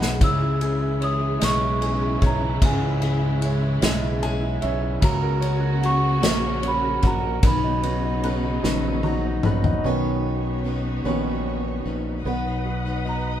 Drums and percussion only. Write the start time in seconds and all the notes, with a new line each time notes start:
0.02 snare
0.21 kick, ride
0.61 ride
1.02 ride
1.41 snare, ride
1.82 ride
2.22 kick, ride
2.62 kick, ride
3.02 ride
3.42 ride
3.82 snare, ride
4.23 ride
4.62 ride
5.02 kick, ride
5.42 ride
5.83 ride
6.23 snare, ride
6.63 ride
7.03 kick, ride
7.43 kick, ride
7.83 ride
8.24 ride
8.64 snare
9.03 high tom
9.43 mid tom
9.64 floor tom